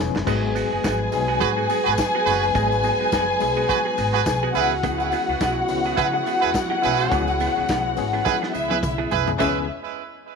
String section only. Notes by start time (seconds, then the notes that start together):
0.27 G#4 G#5
4.55 F#4 F#5
8.54 E4 E5
9.39 C#4 B4 E5